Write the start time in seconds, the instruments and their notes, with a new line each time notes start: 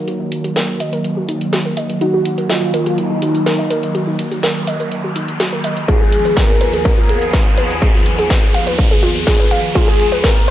Already playing: analog synth pad D#3 F#3 A#3, riser
0.08 synth arpeggio sound F#4, closed hi-hat
0.20 synth arpeggio sound D#4
0.32 closed hi-hat
0.44 synth arpeggio sound F#4, closed hi-hat
0.56 synth arpeggio sound A#4, snare, closed hi-hat
0.80 synth arpeggio sound D#5, closed hi-hat
0.93 synth arpeggio sound A#4, closed hi-hat
1.04 closed hi-hat
1.17 synth arpeggio sound F#4
1.29 synth arpeggio sound D#4, closed hi-hat
1.41 closed hi-hat
1.53 synth arpeggio sound F#4, snare, closed hi-hat
1.65 synth arpeggio sound A#4
1.77 synth arpeggio sound D#5, closed hi-hat
1.90 closed hi-hat
2.01 synth arpeggio sound D#4, analog synth lead F#4, closed hi-hat
2.14 synth arpeggio sound F#4
2.25 closed hi-hat
2.38 synth arpeggio sound A#4, closed hi-hat
2.50 analog synth lead F4, synth arpeggio sound D#5, snare, closed hi-hat
2.74 synth arpeggio sound A#4, closed hi-hat
2.86 synth arpeggio sound F#4, closed hi-hat
2.98 analog synth lead D#4, closed hi-hat
3.11 synth arpeggio sound D#4
3.22 synth arpeggio sound F#4, closed hi-hat
3.35 closed hi-hat
3.46 synth arpeggio sound A#4, snare, closed hi-hat
3.59 synth arpeggio sound D#5
3.71 synth arpeggio sound A#4, closed hi-hat
3.83 closed hi-hat
3.95 synth arpeggio sound F#4, closed hi-hat
4.07 synth arpeggio sound D#4
4.19 closed hi-hat
4.32 synth arpeggio sound F#4, closed hi-hat
4.43 synth arpeggio sound A#4, snare, closed hi-hat
4.67 synth arpeggio sound D#5, closed hi-hat
4.80 synth arpeggio sound A#4, closed hi-hat
4.92 closed hi-hat
5.04 synth arpeggio sound F#4
5.16 synth arpeggio sound D#4, closed hi-hat
5.28 closed hi-hat
5.40 synth arpeggio sound F#4, snare, closed hi-hat
5.53 synth arpeggio sound A#4
5.64 synth arpeggio sound D#5, closed hi-hat
5.77 closed hi-hat
5.88 analog synth pad D#2 F3 B3 G#4, synth arpeggio sound F4, analog synth lead G#4, kick, closed hi-hat
6.01 synth arpeggio sound G#4
6.12 closed hi-hat
6.25 synth arpeggio sound B4, closed hi-hat
6.37 analog synth lead A#4, synth arpeggio sound B4, kick, snare, closed hi-hat
6.49 mid tom
6.61 synth arpeggio sound B4, closed hi-hat
6.73 synth arpeggio sound G#4, closed hi-hat
6.85 analog synth lead A#4, kick, closed hi-hat
6.98 synth arpeggio sound F4
7.09 synth arpeggio sound G#4, closed hi-hat
7.22 closed hi-hat
7.33 synth arpeggio sound B4, kick, snare, closed hi-hat
7.46 synth arpeggio sound F5, mid tom
7.57 synth arpeggio sound B4, closed hi-hat
7.70 closed hi-hat, mid tom
7.82 synth arpeggio sound G#4, kick, closed hi-hat
7.94 synth arpeggio sound F4
8.06 closed hi-hat
8.19 synth arpeggio sound G#4, closed hi-hat
8.30 synth arpeggio sound B4, kick, snare, closed hi-hat
8.43 mid tom
8.54 synth arpeggio sound F5, closed hi-hat
8.67 synth arpeggio sound B4, closed hi-hat
8.79 kick, closed hi-hat
8.91 synth arpeggio sound G#4
9.03 synth arpeggio sound F4, closed hi-hat, mid tom
9.15 closed hi-hat
9.27 synth arpeggio sound G#4, kick, snare, closed hi-hat
9.39 synth arpeggio sound B4, mid tom
9.51 synth arpeggio sound F5, closed hi-hat
9.64 closed hi-hat
9.75 synth arpeggio sound F4, analog synth lead G#4, kick, closed hi-hat
9.88 synth arpeggio sound G#4
9.99 closed hi-hat
10.12 synth arpeggio sound B4, closed hi-hat
10.24 analog synth lead A#4, synth arpeggio sound B4, kick, snare, closed hi-hat
10.36 mid tom